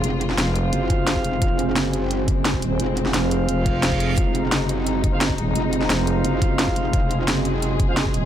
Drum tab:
HH |x-x-x-x-x-x-x-x-|x-x-x-x-x-x-x-x-|x-x-x-x-x-x-x-x-|x-x-x-x-x-x-x-x-|
SD |---oo-------o---|----o-------o---|---oo-------o---|----o-------o---|
BD |----------o--o--|o---------o--o--|----------o--o--|o---------o--o--|

HH |x-x-x-x-x-x-x-x-|x-x-x-x-x-x-x-x-|
SD |---oo-------o---|----o-------o---|
BD |----------o--o--|o---------o--o--|